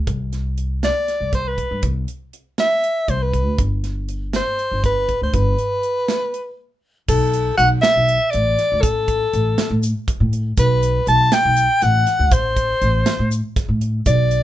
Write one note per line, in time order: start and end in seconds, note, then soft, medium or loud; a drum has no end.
0.07 0.88 C2 medium
0.07 kick loud
0.07 closed hi-hat medium
0.33 snare soft
0.33 closed hi-hat medium
0.58 closed hi-hat medium
0.83 1.30 D5 medium
0.83 snare medium
0.83 closed hi-hat medium
1.08 snare soft
1.08 closed hi-hat soft
1.20 1.61 C2 medium
1.33 1.49 C5 medium
1.33 kick medium
1.33 snare soft
1.33 closed hi-hat medium
1.48 1.84 B4 medium
1.58 kick medium
1.58 closed hi-hat soft
1.71 1.81 G2 medium
1.83 2.03 C2 medium
1.83 kick loud
1.83 closed hi-hat medium
2.08 closed hi-hat medium
2.33 closed hi-hat medium
2.58 3.11 E5 loud
2.58 snare loud
2.58 closed hi-hat medium
2.83 closed hi-hat medium
3.08 3.46 C2 medium
3.08 3.24 C5 medium
3.08 kick medium
3.08 closed hi-hat medium
3.23 3.59 B4 medium
3.34 kick medium
3.34 closed hi-hat medium
3.46 3.56 D2 medium
3.58 4.39 G1 medium
3.58 kick loud
3.58 closed hi-hat medium
3.84 snare soft
3.84 closed hi-hat medium
4.09 closed hi-hat medium
4.33 4.82 C5 medium
4.33 snare loud
4.33 closed hi-hat medium
4.59 closed hi-hat soft
4.71 5.12 G1 medium
4.84 5.20 B4 medium
4.84 kick medium
4.84 snare soft
4.84 closed hi-hat medium
5.09 kick medium
5.09 closed hi-hat medium
5.22 5.32 D2 medium
5.22 5.36 C5 medium
5.33 5.54 G1 medium
5.33 6.59 B4 medium
5.33 kick loud
5.33 closed hi-hat medium
5.58 closed hi-hat medium
5.83 closed hi-hat medium
6.08 snare loud
6.08 closed hi-hat medium
6.34 closed hi-hat soft
7.08 7.49 B1 medium
7.08 7.55 A4 medium
7.08 kick loud
7.08 crash medium
7.08 shaker medium
7.33 closed hi-hat medium
7.33 shaker soft
7.57 7.78 B1 medium
7.57 7.69 F#5 medium
7.57 closed hi-hat medium
7.57 shaker soft
7.82 8.32 E5 medium
7.82 snare loud
7.82 closed hi-hat medium
7.96 8.16 B1 medium
8.08 closed hi-hat medium
8.31 8.54 A1 medium
8.31 8.83 D5 medium
8.31 closed hi-hat medium
8.59 snare soft
8.59 closed hi-hat medium
8.72 8.83 D2 medium
8.81 9.23 A1 medium
8.81 9.82 A4 medium
8.81 kick loud
8.81 closed hi-hat medium
8.81 shaker medium
9.08 kick medium
9.08 closed hi-hat medium
9.08 shaker soft
9.33 9.53 A1 medium
9.33 closed hi-hat medium
9.33 shaker soft
9.58 snare loud
9.58 closed hi-hat medium
9.70 9.90 A2 medium
9.83 closed hi-hat medium
9.83 shaker medium
10.08 kick medium
10.08 closed hi-hat medium
10.20 10.50 A2 medium
10.33 closed hi-hat medium
10.58 10.98 B1 medium
10.58 11.05 B4 medium
10.58 kick loud
10.58 closed hi-hat medium
10.58 shaker medium
10.83 closed hi-hat medium
10.83 shaker soft
11.07 11.27 B1 medium
11.07 11.34 A5 loud
11.07 closed hi-hat medium
11.07 shaker soft
11.32 11.84 G5 loud
11.32 snare loud
11.32 closed hi-hat medium
11.45 11.65 B1 medium
11.57 closed hi-hat medium
11.57 shaker soft
11.82 12.02 A1 medium
11.82 12.34 F#5 medium
11.82 snare soft
11.82 closed hi-hat medium
12.07 snare soft
12.07 closed hi-hat medium
12.19 12.32 D2 medium
12.31 12.72 A1 medium
12.31 13.32 C5 medium
12.31 kick loud
12.31 closed hi-hat medium
12.31 shaker soft
12.56 kick medium
12.56 closed hi-hat medium
12.81 13.02 A1 medium
12.81 closed hi-hat medium
13.06 snare loud
13.06 closed hi-hat medium
13.06 shaker soft
13.19 13.39 A2 medium
13.32 closed hi-hat medium
13.32 shaker medium
13.56 kick medium
13.56 snare soft
13.56 closed hi-hat medium
13.69 13.99 A2 medium
13.81 closed hi-hat medium
14.06 14.43 B1 medium
14.06 14.43 D5 medium
14.06 kick loud
14.06 closed hi-hat medium
14.06 shaker medium
14.31 closed hi-hat medium
14.31 shaker soft